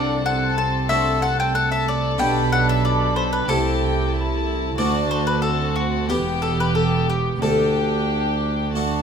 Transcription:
Already playing: C2 C3 D4 A4 D5 F#5
0.25 C4 A4 F#5 A5
0.58 A5
0.89 A3 D4 F#4 A4 E5 A5
1.22 F#5
1.40 G5
1.54 A3 F#5
1.72 E5
1.88 D5
2.18 B1 B2 B3 D4 G4 G5 B5
2.52 F#5
2.69 E5
2.84 D5 B5
3.16 C5
3.33 B4
3.48 C2 C3 A3 E4 G4 A4 A5
3.83 G5
4.14 E4 A5
4.78 D2 A3 D4 F#4 D5 A5
5.11 C5
5.27 B4
5.42 C4 F#4 A4
5.76 F#4
6.09 E1 E2 B3 G4 G5
6.42 A4
6.60 B4
6.74 B3 A4
7.10 G4
7.41 D2 D4 G4 A4 G5
8.75 A3 D4 F#4 A5

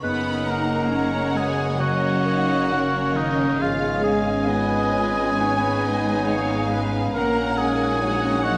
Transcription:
Already playing: C#4 C#5
0.02 F#1 F#2 G#3 A#3 B3 C#4 D#4 A#4 B4 F#5 B5
0.24 C#4
0.47 A#3 D#4 A#4 A#5
0.70 C#4
0.91 C#3 C#4 C#5 F#5
1.13 A#3
1.35 G#3 B3 C#4 F#4 G#4 G#5
1.57 A#3
1.79 C#3 F#3 A#3 F#4 C#5 D#5 F#5
2.25 A#3 D#4
2.47 C#4
2.70 C#3 C#4 D#4 A#4 C#5
2.93 A#3
3.15 D#3 C#4 D#4 F#4 A#4 D#5
3.37 A#3
3.59 G#1 G#2 F3 G#3 B3 C#4 F4 G#4 F5
3.82 C#4
4.03 G#3 D#4 G#4 G#5
4.25 C#4
4.47 G#3 B3 F4 B4 D#5
4.93 C#4 F4
5.16 B3
5.38 G#3 B3 D#4 B4 C#5
5.61 C#4
5.83 D#4 D#5
6.05 C#4
6.26 G#3 C#4 C#5 F5
6.50 B3
6.70 F4 B4
6.94 B3
7.14 A#1 A#2 A#3 C#4 A#4 F#5 A#5
7.39 C#4
7.58 G#3 D#4 G#4 G#5
7.81 C#4
8.02 F#3 C#4 D#4 C#5 F#5
8.24 A#3
8.43 F#3 G#3 F#4 F#5

